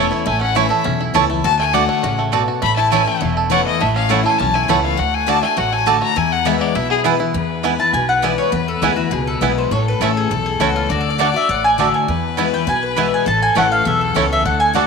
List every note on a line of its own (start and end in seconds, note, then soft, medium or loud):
0.00 0.23 E2 medium
0.00 0.11 E3 loud
0.00 0.11 A3 medium
0.00 0.26 A3 medium
0.00 0.11 C#4 medium
0.00 0.20 C#4 medium
0.00 0.70 A4 medium
0.00 0.19 C#5 medium
0.11 0.26 C#4 soft
0.11 0.25 E4 medium
0.11 0.53 E4 medium
0.26 0.69 A1 loud
0.26 0.82 A2 medium
0.26 1.29 A3 medium
0.26 0.40 G#5 loud
0.41 0.82 C#4 medium
0.41 0.57 F#5 loud
0.55 0.70 E3 medium
0.55 0.65 A3 medium
0.55 0.70 A3 medium
0.55 0.69 C#4 loud
0.55 0.97 E4 medium
0.55 0.65 E4 loud
0.55 0.67 E4 loud
0.55 0.65 C#5 loud
0.55 1.00 E5 loud
0.55 0.65 A5 medium
0.69 0.85 C#4 soft
0.69 0.84 E4 medium
0.69 1.14 A4 medium
0.84 1.11 B1 medium
0.84 1.41 E2 loud
0.84 1.27 C#4 medium
1.01 1.42 E4 medium
1.14 1.40 C#2 loud
1.14 1.29 E3 medium
1.14 1.24 A3 loud
1.14 1.29 A3 loud
1.14 1.29 C#4 medium
1.14 1.24 E4 loud
1.14 1.28 E4 loud
1.14 2.32 A4 medium
1.14 1.24 C#5 loud
1.14 1.24 A5 loud
1.30 1.59 A3 medium
1.30 1.44 C#4 soft
1.30 1.44 E4 medium
1.44 1.87 D2 loud
1.44 1.72 D3 loud
1.44 1.86 F#4 medium
1.44 1.58 A5 loud
1.59 1.88 A3 medium
1.59 1.76 G#5 loud
1.73 2.02 D3 medium
1.73 1.83 A3 loud
1.73 2.02 A3 medium
1.73 2.15 D4 medium
1.73 2.02 D4 loud
1.73 1.83 F#4 medium
1.73 2.02 F#4 loud
1.73 1.83 D5 loud
1.73 2.19 F#5 loud
1.73 1.83 A5 medium
1.89 2.18 A3 medium
2.03 2.46 A1 medium
2.03 2.32 C#3 loud
2.03 2.45 F#4 medium
2.19 2.61 A3 medium
2.32 2.61 B2 medium
2.32 2.42 A3 medium
2.32 2.42 F#4 loud
2.32 2.92 A4 medium
2.32 2.42 D5 loud
2.32 2.42 A5 loud
2.48 2.62 F#4 medium
2.62 3.05 A1 loud
2.62 3.18 A2 medium
2.62 3.07 A3 medium
2.62 2.75 B5 loud
2.76 3.19 E4 medium
2.76 2.90 A5 loud
2.91 3.20 E3 loud
2.91 3.01 A3 loud
2.91 3.20 A3 medium
2.91 3.20 C#4 loud
2.91 3.01 E4 loud
2.91 3.21 E4 loud
2.91 3.36 A4 medium
2.91 3.01 C#5 loud
2.91 3.33 G#5 loud
2.91 3.02 A5 loud
3.07 3.51 A3 medium
3.21 3.64 E1 medium
3.21 3.77 E2 loud
3.21 3.63 E4 medium
3.37 4.25 A4 medium
3.50 3.78 E3 medium
3.50 3.79 A3 medium
3.50 3.60 A3 loud
3.50 3.81 A3 medium
3.50 3.79 C#4 medium
3.50 3.60 E4 loud
3.50 3.79 E4 loud
3.50 3.60 C#5 loud
3.50 3.65 F#5 loud
3.50 3.60 A5 loud
3.66 4.07 E4 medium
3.66 3.83 D#5 loud
3.80 4.23 A1 loud
3.80 4.37 A2 medium
3.80 4.22 A3 medium
3.80 3.95 E5 loud
3.96 4.37 C#4 medium
3.96 4.12 F5 loud
4.09 4.24 E3 medium
4.09 4.19 A3 medium
4.09 4.24 A3 loud
4.09 4.24 C#4 loud
4.09 4.19 E4 medium
4.09 4.22 E4 loud
4.09 4.52 E4 medium
4.09 4.19 C#5 loud
4.09 4.24 F#5 medium
4.09 4.20 A5 loud
4.24 4.39 C#4 soft
4.24 4.38 E4 medium
4.24 4.66 A4 medium
4.24 4.40 G#5 loud
4.39 4.65 B1 loud
4.39 4.96 E2 medium
4.39 4.81 C#4 medium
4.39 4.56 A5 loud
4.54 4.96 E4 medium
4.54 4.71 G#5 loud
4.68 4.94 C#2 medium
4.68 4.97 E3 medium
4.68 4.78 A3 medium
4.68 4.97 A3 medium
4.68 4.97 C#4 loud
4.68 4.78 E4 loud
4.68 4.97 E4 medium
4.68 4.99 A4 medium
4.68 4.78 C#5 loud
4.68 4.83 F#5 loud
4.68 4.79 A5 loud
4.83 4.99 A3 medium
4.83 5.00 F5 loud
4.97 5.41 D2 loud
4.97 5.25 D3 medium
4.97 5.40 F#4 medium
4.97 5.16 F#5 loud
5.14 5.30 G#5 loud
5.27 5.42 D3 loud
5.27 5.42 A3 medium
5.27 5.37 A3 medium
5.27 5.42 D4 loud
5.27 5.69 D4 medium
5.27 5.41 F#4 loud
5.27 5.37 F#4 loud
5.27 5.37 D5 loud
5.27 5.42 A5 loud
5.27 5.38 A5 loud
5.42 5.71 A3 medium
5.42 5.57 D4 soft
5.42 5.56 F#4 medium
5.42 5.59 G#5 loud
5.57 6.00 A1 loud
5.57 6.13 A2 loud
5.57 5.99 F#4 medium
5.57 5.75 F#5 loud
5.73 6.14 A3 medium
5.73 5.89 G#5 loud
5.86 6.15 D3 medium
5.86 5.96 A3 loud
5.86 6.15 A3 loud
5.86 6.15 D4 loud
5.86 5.96 F#4 loud
5.86 6.15 F#4 loud
5.86 6.17 A4 medium
5.86 5.96 D5 loud
5.86 6.02 A5 loud
5.86 5.96 A5 loud
6.02 6.16 F#4 medium
6.02 6.19 A#5 loud
6.16 6.72 E2 loud
6.16 6.59 E2 loud
6.16 6.45 E4 medium
6.16 6.34 G#5 loud
6.32 6.48 F#5 loud
6.45 6.74 E3 loud
6.45 6.74 G#3 loud
6.45 6.55 B3 medium
6.45 6.74 B3 loud
6.45 6.55 E4 loud
6.45 6.74 E4 medium
6.45 6.74 E4 loud
6.45 6.55 B4 loud
6.45 6.63 E5 loud
6.45 6.55 G#5 loud
6.61 6.89 B3 medium
6.61 6.77 D5 loud
6.75 7.18 B1 medium
6.75 7.32 B2 medium
6.75 7.03 E4 medium
6.75 6.90 E5 loud
6.90 7.31 B3 medium
6.90 6.99 G#4 loud
7.04 7.19 E3 medium
7.04 7.19 G#3 medium
7.04 7.14 B3 loud
7.04 7.19 B3 loud
7.04 7.19 E4 medium
7.04 7.14 E4 loud
7.04 7.18 E4 loud
7.04 7.14 B4 loud
7.04 7.14 G#5 loud
7.19 7.34 B3 medium
7.19 7.34 E4 medium
7.19 7.35 E4 medium
7.34 7.77 E2 loud
7.34 7.91 E2 medium
7.34 9.67 B4 loud
7.63 7.78 E3 medium
7.63 7.78 G#3 medium
7.63 7.73 B3 medium
7.63 7.71 B3 medium
7.63 7.79 B3 loud
7.63 7.73 E4 medium
7.63 7.67 E4 medium
7.63 7.78 E4 loud
7.63 7.73 B4 medium
7.63 7.74 G#5 medium
7.79 7.94 B3 soft
7.79 7.93 E4 medium
7.79 7.93 A5 loud
7.93 8.36 B1 medium
7.93 8.50 B2 medium
7.93 8.08 G#5 medium
8.09 8.23 F#5 loud
8.22 8.51 E3 medium
8.22 8.51 G#3 medium
8.22 8.32 B3 medium
8.22 8.51 B3 medium
8.22 8.30 B3 medium
8.22 8.32 E4 medium
8.22 8.52 E4 loud
8.22 8.26 E4 medium
8.22 8.33 B4 loud
8.22 8.38 D5 medium
8.22 8.33 G#5 loud
8.38 8.52 C#5 loud
8.52 9.09 E2 medium
8.52 8.74 E2 loud
8.52 8.67 B4 medium
8.68 8.82 A4 medium
8.82 9.07 D2 medium
8.82 8.96 E3 medium
8.82 8.97 G#3 medium
8.82 8.92 B3 loud
8.82 8.89 B3 medium
8.82 8.97 B3 medium
8.82 8.92 E4 medium
8.82 8.95 E4 medium
8.82 8.85 E4 medium
8.82 8.96 G#4 medium
8.82 8.92 B4 loud
8.82 8.92 G#5 loud
8.96 9.12 B3 soft
8.96 9.11 E4 medium
8.96 9.11 F#4 medium
9.11 9.37 C#2 medium
9.11 9.68 B2 medium
9.11 9.27 G#4 medium
9.27 9.41 A4 medium
9.41 9.67 B1 medium
9.41 9.69 E3 medium
9.41 9.70 G#3 medium
9.41 9.70 B3 medium
9.41 9.51 B3 loud
9.41 9.49 B3 medium
9.41 9.51 E4 medium
9.41 9.70 E4 medium
9.41 9.45 E4 medium
9.41 9.57 B4 medium
9.41 9.51 B4 loud
9.41 9.51 G#5 loud
9.58 9.72 C5 medium
9.71 9.92 A1 loud
9.71 10.28 A2 medium
9.71 10.91 A4 loud
9.71 9.86 C#5 loud
9.88 10.01 B4 medium
10.00 10.26 A1 medium
10.00 10.29 E3 medium
10.00 10.10 A3 medium
10.00 10.29 A3 loud
10.00 10.08 A3 medium
10.00 10.30 C#4 loud
10.00 10.08 C#4 medium
10.00 10.10 E4 medium
10.00 10.30 E4 loud
10.00 10.08 E4 medium
10.00 10.16 A4 medium
10.00 10.10 C#5 medium
10.00 10.11 A5 loud
10.17 10.31 G#4 medium
10.31 10.56 B1 medium
10.31 10.87 E2 medium
10.31 10.45 A4 medium
10.46 10.60 G#4 medium
10.60 10.85 C#2 medium
10.60 10.88 E3 medium
10.60 10.69 A3 medium
10.60 10.88 A3 medium
10.60 10.67 A3 medium
10.60 10.88 C#4 loud
10.60 10.67 C#4 medium
10.60 10.69 E4 medium
10.60 10.89 E4 loud
10.60 10.67 E4 medium
10.60 10.75 F#4 medium
10.60 10.70 C#5 loud
10.60 10.70 A5 loud
10.76 10.90 F4 medium
10.89 11.32 D2 medium
10.89 11.17 D3 medium
10.89 11.00 F#4 medium
10.89 11.93 D5 loud
11.01 11.10 A4 medium
11.10 11.20 D5 medium
11.18 11.33 D3 medium
11.18 11.28 A3 medium
11.18 11.33 A3 loud
11.18 11.27 A3 medium
11.18 11.34 D4 loud
11.18 11.27 D4 medium
11.18 11.28 F#4 loud
11.18 11.33 F#4 loud
11.18 11.27 F#4 medium
11.18 11.29 D5 medium
11.18 11.35 F#5 medium
11.18 11.29 A5 medium
11.34 11.49 D4 soft
11.34 11.48 F#4 medium
11.34 11.50 E5 medium
11.49 11.91 A1 medium
11.49 12.05 A2 medium
11.49 11.64 F#5 medium
11.64 11.78 G#5 loud
11.78 12.06 D3 medium
11.78 12.06 A3 medium
11.78 11.88 A3 medium
11.78 11.86 A3 medium
11.78 12.07 D4 medium
11.78 11.86 D4 medium
11.78 12.07 F#4 medium
11.78 11.88 F#4 medium
11.78 11.86 F#4 medium
11.78 11.88 D5 loud
11.78 11.93 E5 medium
11.78 11.88 A5 loud
11.94 12.21 G#5 medium
12.08 12.51 E2 loud
12.08 12.65 E2 medium
12.08 13.27 B4 loud
12.37 12.52 E3 medium
12.37 12.52 G#3 medium
12.37 12.47 B3 medium
12.37 12.44 B3 medium
12.37 12.53 B3 loud
12.37 12.47 E4 medium
12.37 12.41 E4 medium
12.37 12.52 E4 medium
12.37 12.47 B4 medium
12.37 12.47 G#5 medium
12.53 12.68 B3 medium
12.53 12.67 E4 medium
12.53 12.67 G5 medium
12.67 13.10 B1 medium
12.67 13.23 B2 medium
12.67 12.83 G#5 loud
12.83 12.97 B4 medium
12.96 13.25 E3 medium
12.96 13.25 G#3 medium
12.96 13.06 B3 medium
12.96 13.25 B3 loud
12.96 13.04 B3 medium
12.96 13.06 E4 loud
12.96 13.25 E4 loud
12.96 13.00 E4 medium
12.96 13.06 B4 loud
12.96 13.12 E5 medium
12.96 13.07 G#5 medium
13.14 13.27 G#5 loud
13.25 13.48 A1 loud
13.25 13.83 A2 medium
13.25 14.44 A4 loud
13.25 13.42 A5 loud
13.42 13.56 G#5 loud
13.55 13.81 A1 medium
13.55 13.84 E3 medium
13.55 13.65 A3 medium
13.55 13.84 A3 medium
13.55 13.63 A3 medium
13.55 13.84 C#4 medium
13.55 13.63 C#4 medium
13.55 13.65 E4 medium
13.55 13.84 E4 loud
13.55 13.63 E4 medium
13.55 13.65 C#5 medium
13.55 13.71 F#5 medium
13.55 13.66 A5 medium
13.72 13.86 F5 medium
13.85 14.11 B1 loud
13.85 14.42 E2 loud
13.85 14.01 E5 medium
14.01 14.15 A4 medium
14.14 14.41 C#2 medium
14.14 14.43 E3 medium
14.14 14.43 A3 medium
14.14 14.25 A3 medium
14.14 14.22 A3 medium
14.14 14.44 C#4 loud
14.14 14.23 C#4 medium
14.14 14.25 E4 loud
14.14 14.44 E4 medium
14.14 14.23 E4 medium
14.14 14.25 C#5 loud
14.14 14.31 C#5 medium
14.14 14.25 A5 loud
14.32 14.45 E5 loud
14.44 14.87 D2 loud
14.44 14.72 D3 loud
14.44 14.87 A4 loud
14.44 14.60 F#5 medium
14.60 14.74 G#5 loud
14.73 14.87 D3 medium
14.73 14.87 A3 medium
14.73 14.84 A3 medium
14.73 14.82 A3 medium
14.73 14.87 D4 loud
14.73 14.82 D4 medium
14.73 14.87 F#4 loud
14.73 14.84 F#4 medium
14.73 14.82 F#4 medium
14.73 14.84 D5 loud
14.73 14.87 F#5 medium
14.73 14.84 A5 loud